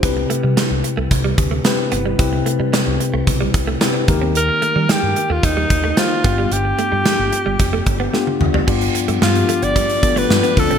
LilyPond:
<<
  \new Staff \with { instrumentName = "Alto saxophone" } { \time 4/4 \key g \mixolydian \tempo 4 = 111 r1 | r1 | bes'4 g'8. f'16 ees'4 f'4 | g'2. r4 |
r4 f'8. d''4 b'8. a'8 | }
  \new Staff \with { instrumentName = "Tine electric piano" } { \time 4/4 \key g \mixolydian <c c' e' g' b'>4. r4. <c' e' g' b'>4 | <c c' e' g' b'>4. r4. <c' e' g' b'>8 <ees bes ees' g' bes'>8~ | <ees bes ees' g' bes'>4 r2 <bes ees' g' c''>8 <g, b d' f' g'>8~ | <g, b d' f' g'>4 r2 <b d' f' g'>4 |
<g, b d' f' g'>4. r4 <b d' f' a'>8 <b d' f' g'>8 <d c' d' f' a'>8 | }
  \new Staff \with { instrumentName = "Ambient pad" } { \time 4/4 \key g \mixolydian r1 | r1 | r1 | r1 |
<f b g'>2.~ <f b g'>8 r8 | }
  \new Staff \with { instrumentName = "Clean electric guitar" } { \time 4/4 \key g \mixolydian r8 a16 g16 g16 r8 a16 r16 g16 r16 a16 r8 b16 g16 | r8 a16 g16 g16 r8 a16 r16 g16 r16 a16 b16 r8 c'16 | r8 a16 g16 g16 r8 a16 r16 g16 r16 a16 r8 b16 g16 | r8 a16 g16 f16 r8 g16 r16 a16 r16 b16 a16 r8 g16 |
g16 r8 a16 r8 a16 r16 g16 r8 a16 r16 b16 r16 c'16 | }
  \new Staff \with { instrumentName = "Fingered electric bass" } { \clef bass \time 4/4 \key g \mixolydian c,8 r16 c16 r16 c,16 r16 c,16 c,8 d,8 r8 g,,8 | c,8 r16 c16 r16 c,16 r16 c,16 b,,8 c,8 r8 ees,8~ | ees,8 r16 ees16 r16 g,16 r16 ees,16 ees,8 ees,8 r8 g,,8 | g,,8 r16 g,16 r16 g,,16 r16 g,,16 f,,8 g,,8 r8 d,8 |
g,,8 r16 g,16 g,8 r16 g,,16 r8 g,,8 g,16 r16 d,16 a,,16 | }
  \new DrumStaff \with { instrumentName = "Drums" } \drummode { \time 4/4 <hh bd>8 hh8 <hh sn>8 hh8 <hh bd>8 <hh bd>8 <hh sn>8 hh8 | <hh bd>8 hh8 <hh sn>8 hh8 <hh bd>8 <hh bd>8 <hh sn>8 <hh bd>8 | hh8 hh8 <hh sn>8 hh8 <hh bd>8 <hh bd>8 <hh sn>8 <hh bd>8 | hh8 hh8 <hh sn>8 hh8 <hh bd>8 <hh bd>8 sn16 tommh16 toml16 tomfh16 |
<cymc bd>16 hh16 hh16 hh16 sn16 hh16 hh16 hh16 <hh bd>16 hh16 <hh bd>16 hh16 sn16 hh16 <hho bd>16 hh16 | }
>>